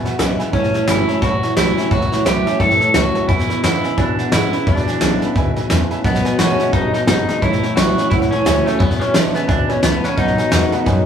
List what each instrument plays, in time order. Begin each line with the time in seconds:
Already playing: steel-string acoustic guitar B2
0.04 clean electric guitar E2 B2, honky-tonk piano B4 E5 F#5, muted upright bass stroke, snare
0.18 upright bass B1, clean electric guitar E2 C#3, steel-string acoustic guitar D3 G#3 B3 E4, honky-tonk piano B4 E5 G#5, snare, hi-hat pedal
0.38 clean electric guitar E2 C#3, steel-string acoustic guitar B3 E4, honky-tonk piano B4 E5 G#5, muted upright bass stroke, snare
0.52 upright bass A1, clean electric guitar A2 E3 C#4, steel-string acoustic guitar A2, honky-tonk piano C#5 E5 A5, kick, snare
0.64 snare
0.73 clean electric guitar A2 E3, honky-tonk piano C#5 E5 A5, muted upright bass stroke, snare
0.87 upright bass G1, clean electric guitar A2 F#3 E4, steel-string acoustic guitar E3 G3 C#4 E4, honky-tonk piano C#5 E5 G5, snare, hi-hat pedal
1.07 clean electric guitar A2 F#3, steel-string acoustic guitar C#4 E4, honky-tonk piano C#5 E5 A5, muted upright bass stroke, snare
1.22 upright bass A1, steel-string acoustic guitar E2, clean electric guitar A2 E3 F#4, honky-tonk piano C#5 E5 A5, kick, snare
1.42 clean electric guitar A2 E3, honky-tonk piano C#5 E5 A5, muted upright bass stroke, snare
1.56 upright bass B1, clean electric guitar A2 F#3 E4, steel-string acoustic guitar E3 G3 C#4 E4, honky-tonk piano C#5 E5 A5, snare, hi-hat pedal
1.77 clean electric guitar A2 F#3, steel-string acoustic guitar C#4 E4, honky-tonk piano C#5 E5 G5, muted upright bass stroke, snare
1.91 upright bass C#2, clean electric guitar A2 E3 F#4, steel-string acoustic guitar A2, honky-tonk piano C#5 E5 A5, kick, snare
2.02 snare
2.11 clean electric guitar A2 E3, honky-tonk piano C#5 E5 B5, muted upright bass stroke, snare
2.25 upright bass B1, clean electric guitar A2 F#3 G4, steel-string acoustic guitar E3 G3 C#4 E4, honky-tonk piano C#5 E5 B5, snare, hi-hat pedal
2.46 clean electric guitar A2 F#3, steel-string acoustic guitar C#4 E4, honky-tonk piano C#5 E5 A5, muted upright bass stroke, snare
2.59 upright bass A1, steel-string acoustic guitar G2, clean electric guitar A2 E3 A4, honky-tonk piano C#5 E5 A5, kick, snare
2.70 snare
2.80 clean electric guitar A2 E3, honky-tonk piano C#5 E5 A5, muted upright bass stroke, snare
2.94 upright bass C#2, steel-string acoustic guitar F#2, clean electric guitar A2 F#3 F#4, honky-tonk piano C#5 E5 A5, snare, hi-hat pedal
3.14 clean electric guitar A2 F#3, honky-tonk piano C#5 E5 A5, muted upright bass stroke, snare
3.28 clean electric guitar E2 B2 E4, upright bass E2, steel-string acoustic guitar E2, honky-tonk piano B4 E5 G#5, kick, snare
3.39 snare
3.49 clean electric guitar E2 B2, honky-tonk piano B4 E5 B5, muted upright bass stroke, snare
3.63 clean electric guitar E2 C#3 E4, upright bass A2, steel-string acoustic guitar D3 G#3 B3 E4, honky-tonk piano B4 E5 F#5, snare, hi-hat pedal
3.84 clean electric guitar E2 C#3, steel-string acoustic guitar B3 E4, honky-tonk piano B4 E5 G#5, muted upright bass stroke, snare
3.97 clean electric guitar E2 B2 D4, steel-string acoustic guitar B2, upright bass B2, honky-tonk piano B4 E5 G#5, kick, snare
4.18 clean electric guitar E2 B2, honky-tonk piano B4 E5 F#5, muted upright bass stroke, snare
4.32 clean electric guitar E2 C#3 E4, upright bass G#2, steel-string acoustic guitar D3 G#3 B3 E4, honky-tonk piano B4 E5 F#5, snare, hi-hat pedal
4.53 clean electric guitar E2 C#3, steel-string acoustic guitar B3 E4, honky-tonk piano B4 E5 B5, muted upright bass stroke, snare
4.67 clean electric guitar E2 B2 D4, upright bass E2, steel-string acoustic guitar E2, honky-tonk piano B4 E5 B5, kick, snare
4.77 snare
4.87 clean electric guitar E2 B2, honky-tonk piano B4 E5 G#5, muted upright bass stroke, snare
5.01 upright bass B1, clean electric guitar E2 C#3, steel-string acoustic guitar D3 G#3 B3 E4, honky-tonk piano B4 E5 G#5, snare, hi-hat pedal
5.22 clean electric guitar E2 C#3, steel-string acoustic guitar B3 E4, honky-tonk piano B4 E5 B5, snare
5.35 upright bass D2, clean electric guitar E2 B2, steel-string acoustic guitar G#2, honky-tonk piano B4 E5 G#5, kick, snare
5.56 clean electric guitar E2 B2, honky-tonk piano B4 E5 G#5, muted upright bass stroke, snare
5.70 clean electric guitar E2 C#3, upright bass E2, steel-string acoustic guitar A2, honky-tonk piano B4 E5 G#5, snare, hi-hat pedal
5.90 clean electric guitar E2 C#3, honky-tonk piano B4 E5 G#5, muted upright bass stroke, snare
6.04 upright bass B1, clean electric guitar B2 F#3 B3, steel-string acoustic guitar B2, honky-tonk piano B4 D#5 F#5, kick, snare
6.15 snare
6.24 clean electric guitar B2 F#3, honky-tonk piano B4 D#5 G#5, snare
6.38 upright bass A1, clean electric guitar B2 G#3 C#4, steel-string acoustic guitar D#3 A3 B3 F#4, honky-tonk piano B4 D#5 F#5, snare, hi-hat pedal
6.58 clean electric guitar B2 G#3, steel-string acoustic guitar B3, honky-tonk piano B4 D#5 F#5, muted upright bass stroke, snare
6.73 upright bass F#1, clean electric guitar B2 F#3 D#4, steel-string acoustic guitar C#3, honky-tonk piano B4 D#5 A5, kick, snare
6.93 clean electric guitar B2 F#3 D#4, honky-tonk piano B4 D#5 A5, muted upright bass stroke, snare
7.07 upright bass G#1, clean electric guitar B2 G#3 D#4, steel-string acoustic guitar B2, honky-tonk piano B4 D#5 F#5, snare, hi-hat pedal
7.28 clean electric guitar B2 G#3, honky-tonk piano B4 D#5 A5, muted upright bass stroke, snare
7.42 upright bass A1, clean electric guitar A2 E3 E4, steel-string acoustic guitar A2, honky-tonk piano C#5 E5 A5, kick, snare
7.53 snare
7.62 clean electric guitar A2 E3, honky-tonk piano C#5 E5 G5, muted upright bass stroke, snare
7.76 upright bass B1, clean electric guitar A2 F#3 F#4, steel-string acoustic guitar E3 G3 C#4 E4, honky-tonk piano C#5 E5 A5, snare, hi-hat pedal
7.97 clean electric guitar A2 F#3, steel-string acoustic guitar C#4 E4, honky-tonk piano C#5 E5 B5, snare
8.10 upright bass C#2, steel-string acoustic guitar E2, clean electric guitar A2 E3 E4, honky-tonk piano C#5 E5 F#5, kick, snare
8.22 snare
8.31 clean electric guitar A2 E3 C#4, honky-tonk piano C#5 E5 A5, muted upright bass stroke, snare
8.45 upright bass D2, clean electric guitar A2 F#3, steel-string acoustic guitar E3 G3 C#4 E4, honky-tonk piano C#5 E5 G5, snare, hi-hat pedal
8.65 clean electric guitar A2 F#3 A3, steel-string acoustic guitar C#4 E4, honky-tonk piano C#5 E5 A5, muted upright bass stroke, snare
8.79 steel-string acoustic guitar E2, upright bass E2, clean electric guitar E2 B2 B3, honky-tonk piano B4 E5 G#5, kick, snare
8.91 snare
8.99 clean electric guitar E2 B2 C#4, honky-tonk piano B4 E5 G#5, muted upright bass stroke, snare
9.14 upright bass B1, clean electric guitar E2 C#3 D4, steel-string acoustic guitar D3 G#3 B3 E4, honky-tonk piano B4 E5 G#5, snare, hi-hat pedal
9.34 clean electric guitar E2 C#3 B3, steel-string acoustic guitar B3 E4, honky-tonk piano B4 E5 G#5, muted upright bass stroke, snare
9.48 upright bass D2, clean electric guitar E2 B2 D4, steel-string acoustic guitar G#2, honky-tonk piano B4 E5 G#5, kick, snare
9.68 clean electric guitar E2 B2 C#4, honky-tonk piano B4 E5 G#5, muted upright bass stroke, snare
9.82 upright bass C#2, clean electric guitar E2 C#3 B3, steel-string acoustic guitar A2, honky-tonk piano B4 E5 G#5, snare, hi-hat pedal
10.03 clean electric guitar E2 C#3 C#4, honky-tonk piano B4 E5 B5, muted upright bass stroke, snare
10.17 upright bass B1, steel-string acoustic guitar B2, clean electric guitar B2 F#3 D#4, honky-tonk piano B4 D#5 F#5, kick, snare
10.28 snare
10.37 clean electric guitar B2 F#3, honky-tonk piano B4 D#5 G#5, muted upright bass stroke, snare
10.51 upright bass E2, clean electric guitar B2 G#3, steel-string acoustic guitar D#3 A3 B3 F#4, honky-tonk piano B4 D#5 G#5, snare, hi-hat pedal
10.72 clean electric guitar B2 G#3, steel-string acoustic guitar B3 F#4, honky-tonk piano B4 D#5 F#5 A5, muted upright bass stroke, snare
10.86 upright bass F#2, steel-string acoustic guitar F#2, clean electric guitar B2 F#3, honky-tonk piano B4 D#5 G#5, kick, snare